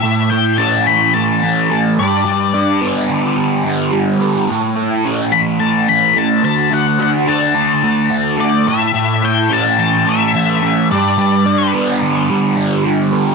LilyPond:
<<
  \new Staff \with { instrumentName = "Lead electric guitar" } { \time 4/4 \key a \mixolydian \tempo 4 = 108 e''8 g''8 a''8 b''8 a''4. d''8~ | d''4 r2. | r4. b''8 a''8 b''8 a''8 a''8 | fis''8 fis''8 a''2 d''8 e''8~ |
e''8 g''8 a''8 a''8 e''4. d''8~ | d''4 r2. | }
  \new Staff \with { instrumentName = "Distorted electric guitar" } { \clef bass \time 4/4 \key a \mixolydian a,8 e'8 cis'8 e8 a8 e8 a8 g,8 | g,8 d'8 b8 d8 g8 d8 g8 b8 | a,8 e'8 cis'8 e8 a8 e8 a8 d8 | d8 fis'8 d'8 d8 a8 d8 a8 a,8 |
a,8 e'8 cis'8 e8 a8 e8 a8 g,8 | g,8 d'8 b8 d8 g8 d8 g8 b8 | }
>>